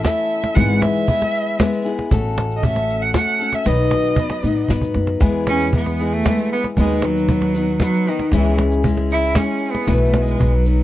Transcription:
Already playing: E3
0.03 A3 C#4 E4 A4 E5, cajon bass, cajon slap, snare, closed hi-hat
0.17 shaker
0.31 shaker
0.44 cajon slap
0.55 G#1 G#2 E3 G#3 B3 E4 G#4 F#5, cajon bass, kick, closed hi-hat, shaker
0.82 E5, cajon slap
0.96 shaker
1.07 G#3 B3 E4 G#4, cajon bass, closed hi-hat
1.22 cajon slap
1.35 shaker
1.59 G#3 B3 E4 G#4, cajon bass, snare, cajon slap, closed hi-hat
1.73 shaker
1.84 G#3 B3 E4 G#4, shaker
1.99 cajon slap
2.11 A1 A3 C#4 F#4 A4, cajon bass, kick, closed hi-hat, shaker
2.38 cajon slap
2.51 shaker
2.56 D#5
2.63 A3 C#4 F#4 A4 E5, cajon bass, closed hi-hat
2.76 cajon slap
2.90 shaker
3.02 F#5
3.14 A3 C#4 F#4 A4 F#5, cajon bass, cajon slap, snare, closed hi-hat
3.28 shaker
3.39 C#4 F#4 A4, shaker
3.53 E5, cajon slap
3.65 B1 B2 D#3 F#3 B3 D#4 B4 D#5, cajon bass, kick, cajon slap, closed hi-hat, shaker
3.91 cajon slap
4.04 cajon slap, shaker
4.16 F#3 B3 D#4 B4, cajon bass, closed hi-hat
4.30 cajon slap
4.42 A2 F#3 B3 D#4 B4, shaker
4.56 cajon slap, shaker
4.68 G#2 F#3 B3 D#4 B4, cajon bass, snare, closed hi-hat, shaker
4.81 cajon bass, shaker
4.94 F#2, cajon slap
5.07 cajon slap
5.20 E2 E3 G#3 B3 E4 G#4, cajon bass, kick, cajon slap, closed hi-hat, shaker
5.35 shaker
5.47 C#4, cajon slap
5.60 cajon slap, shaker
5.73 G#3 B3 E4 G#4, cajon bass, closed hi-hat, shaker
5.86 cajon slap
5.99 G#3 B3 E4 G#4, shaker
6.13 A3
6.25 G#3 B3 E4 G#4, cajon bass, snare, cajon slap, closed hi-hat
6.39 shaker
6.52 B3
6.64 cajon slap
6.77 D#2 D#3 F#3 G#3 B3 D#4 B4, cajon bass, kick, cajon slap, closed hi-hat, shaker
6.90 shaker
7.02 F#3, cajon slap
7.16 cajon slap, shaker
7.28 F#3 B3 D#4 B4, cajon bass, closed hi-hat, shaker
7.42 cajon slap
7.54 B3 D#4 B4, shaker
7.80 F#3 B3 D#4 B4, cajon bass, cajon slap, snare, closed hi-hat
7.94 shaker
8.07 D#3 B3 D#4 B4
8.19 cajon slap
8.32 C#2 C#3 E3 G#3 C#4 E4 G#4, cajon bass, kick, cajon slap, closed hi-hat, shaker
8.46 shaker
8.58 cajon slap
8.71 cajon slap, shaker
8.83 G#3 C#4 E4 G#4, cajon bass, closed hi-hat, shaker
8.97 cajon slap
9.11 E4, shaker
9.35 G#3 C#4 E4 G#4, cajon bass, cajon slap, snare, closed hi-hat
9.71 B3, cajon slap
9.87 B1 B2 E3 F#3 A3 B3 E4 B4, cajon bass, kick, cajon slap, closed hi-hat, shaker
10.00 cajon slap
10.14 cajon slap, shaker
10.22 G#3
10.27 cajon slap, shaker
10.39 B1 F#3 B3 D#4 B4, cajon bass, closed hi-hat
10.53 F#3, shaker
10.65 F#3 B3 D#4 B4, cajon slap, shaker

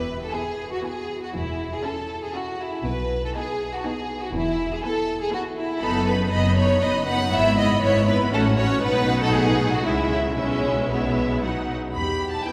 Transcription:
Already playing: E1 E2 B4
0.22 A4
0.32 B3 E4 G#4 G#5
0.72 F#4
0.83 B3 E4 G#4 G#5
1.23 F#4
1.34 E1 E2 E4
1.73 G#4
1.83 C#4 E4 A4 A5
2.23 G#4
2.34 C#4 E4 F#4 A5
2.60 E4
2.84 B1 B2 B4
3.25 A4
3.35 B3 D#4 G#4 A5
3.74 F#4
3.84 B3 D#4 G#4 A5
4.23 F#4
4.33 E1 E2 E4
4.72 G#4
4.83 B3 E4 A4 G#5
5.21 G#4
5.32 B3 E4 F#4 G#5
5.57 E4
5.81 F#1 F#2 B3 D#4 A4 B5
6.06 B3 D#4 B4 B5
6.30 F#1 F#2 B3 D#4 D#5 B5
6.56 B3 D#4 C#5 B5
6.81 F#1 F#2 B3 D#4 D#5 B5
7.06 B3 D#4 F#5 B5
7.32 G#1 G#2 B3 E4 E5 B5
7.57 B3 E4 D#5 B5
7.82 G#1 G#2 B3 E4 C#5 B5
8.08 B3 E4 B4 B5
8.33 A1 A2 C#4 F#4 A4 F#5
8.57 C#4 F#4 C#5 F#5
8.82 B1 B2 B3 D#4 B4 F#5
9.22 A4
9.33 A3 G#4
9.73 F#4
9.84 C#2 C#3 G#3 E4 E5
10.11 E4
10.37 B1 B2 G#3 C#4 E4 E5
10.90 G#3 B3 E4 E5
11.42 F#3 D#4 F#5
11.94 E2 G4 B5
12.33 A5
12.45 B3 E4 G4 B4 G5

